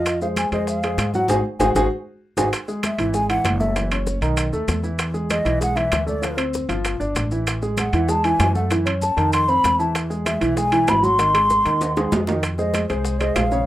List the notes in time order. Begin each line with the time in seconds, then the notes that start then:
Already playing: F2 F3 F4 D#5 F5
0.06 high bongo, high timbale, maracas
0.21 G#3 G#4 C5 F5, high bongo, high conga, maracas
0.36 G#5, high bongo, high conga, high timbale, maracas
0.52 F2 G#3 G#4 C5 D#5, high bongo, high conga, high timbale, maracas
0.67 F5, high bongo, high conga, maracas
0.83 G#3 G#4 C5, high conga, high timbale, maracas
0.97 G#2, high bongo, low bongo, high conga, high timbale, maracas
1.14 F#3 F#4 F#5, high bongo, high conga, maracas
1.28 G#1 F#4 G#4 C5 G#5, low bongo, high conga, high timbale, maracas
1.59 G#1 F#4 G#4 C5 G#5, low bongo, high conga, high timbale, maracas
1.75 G#1 F#4 G#4 C5 G#5, low bongo, high conga, high timbale, maracas
2.37 G#1 F#4 G#4 C5 G#5, low bongo, high conga, high timbale, maracas
2.53 high bongo, high conga, high timbale, maracas
2.68 G#3 G#4, high bongo, high conga, maracas
2.83 E5, high bongo, high conga, high timbale, maracas
2.98 G#1 E3 E4, high bongo, high conga, high timbale, maracas
3.14 G#3 G#4 G#5, high bongo, high conga, maracas
3.29 E3 E4 F#5, high conga, high timbale, maracas
3.44 F#1, high bongo, low bongo, high conga, high timbale, maracas
3.60 A3 A4 E5, high bongo, high conga, maracas
3.76 E3 E4, high bongo, high conga, high timbale, maracas
3.91 C#4 C#5, high bongo, high timbale, maracas
4.07 high bongo, high conga, maracas
4.21 B1 D#3 D#4, high timbale, maracas
4.37 high bongo, high conga, high timbale, maracas
4.53 D#2 A3 A4, high bongo, high conga, maracas
4.68 E2, high bongo, low bongo, high conga, high timbale, maracas
4.83 E3 E4, high bongo, high conga, maracas
4.99 high bongo, high timbale, maracas
5.14 G#3 G#4, high bongo, maracas
5.30 D#5, high bongo, high conga, high timbale, maracas
5.45 B1 E3 E4, high bongo, high timbale, maracas
5.61 G#3 G#4 F#5, high bongo, maracas
5.76 E3 E4 E5, high timbale, maracas
5.92 D2, high bongo, low bongo, high conga, high timbale, maracas
6.07 A3 A4 D5, high bongo, high conga, maracas
6.22 F3 F4, high bongo, high conga, high timbale, maracas
6.37 C4 C5, high bongo, high conga, high timbale, maracas
6.54 high bongo, high conga, maracas
6.69 G1 F3 F4, high timbale, maracas
6.85 high bongo, high conga, high timbale, maracas
7.00 G1 D4 D5, high bongo, high conga, maracas
7.15 A1, high bongo, low bongo, high conga, high timbale, maracas
7.31 E3 E4, high bongo, maracas
7.47 high bongo, high conga, high timbale, maracas
7.62 G#3 G#4, high bongo, high conga, maracas
7.77 F#5, high bongo, high conga, high timbale, maracas
7.93 E2 E3 E4, high bongo, high conga, high timbale, maracas
8.09 G#3 G#4 A5, high bongo, high conga, maracas
8.24 E3 E4 G#5, high timbale, maracas
8.40 F#2, high bongo, low bongo, high conga, high timbale, low timbale, maracas
8.55 A3 A4 F#5, high bongo, high conga, maracas
8.71 E3 E4, high bongo, high conga, high timbale, maracas
8.85 C#4 C#5, high bongo, high timbale, maracas
9.02 A5, high bongo, high conga, maracas
9.17 F2 D#3 D#4, high timbale, maracas
9.33 C6, high bongo, high conga, high timbale, maracas
9.48 C4 C5 B5, high bongo, high conga, maracas
9.64 E2, high bongo, low bongo, high conga, high timbale, maracas
9.79 E3 E4 A5, high bongo, maracas
9.95 high bongo, high timbale, maracas
10.10 G#3 G#4, high bongo, high conga, maracas
10.26 E5, high bongo, high conga, high timbale, maracas
10.41 B1 E3 E4, high bongo, high conga, high timbale, maracas
10.57 G#3 G#4 G#5, high bongo, maracas
10.72 E3 E4, high conga, high timbale, maracas
10.87 G#1 B5, high bongo, low bongo, high conga, high timbale, low timbale, maracas
11.03 F#3 F#4 C6, high bongo, high conga, maracas
11.19 D#3 D#4, high bongo, high conga, high timbale, maracas
11.34 G#3 G#4, high bongo, high timbale, maracas
11.50 high bongo, high conga, maracas
11.65 D#2 D#3 D#4, high bongo, high timbale, maracas
11.81 low bongo, high conga, high timbale, maracas
11.96 G#3 G#4, low bongo, high timbale, maracas
12.12 F2, low bongo, high conga, low timbale, maracas
12.27 D#3 D#4, low bongo, high conga, low timbale, maracas
12.43 high bongo, high timbale, maracas
12.58 G#3 G#4 C5 D#5, high bongo, high conga, maracas
12.74 high bongo, high conga, high timbale, maracas
12.89 C2 G#3 G#4 C5, high bongo, high timbale, maracas
13.05 high bongo, high conga, maracas
13.20 G#3 G#4 C5 D#5, high timbale, maracas
13.35 A#1 F5, high bongo, low bongo, high conga, high timbale, low timbale, maracas
13.51 C#3 C#4 C#5, high bongo, high conga, maracas